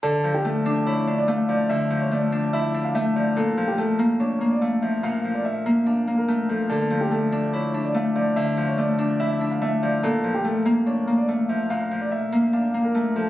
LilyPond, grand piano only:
\new Staff \with { instrumentName = "Grand piano" } { \time 4/4 \key d \minor \tempo 4 = 144 a'8. g'16 a'4 cis''8. d''16 f''8 d''8 | e''8. cis''16 d''4 e''8. f''16 e''8 d''8 | a'8. g'16 a'4 cis''8. d''16 f''8 e''8 | f''8. d''16 e''4 f''8. bes'8. a'8 |
a'8. g'16 a'4 cis''8. d''16 f''8 d''8 | e''8. cis''16 d''4 e''8. f''16 e''8 d''8 | a'8. g'16 a'4 cis''8. d''16 f''8 e''8 | f''8. d''16 e''4 f''8. bes'8. a'8 | }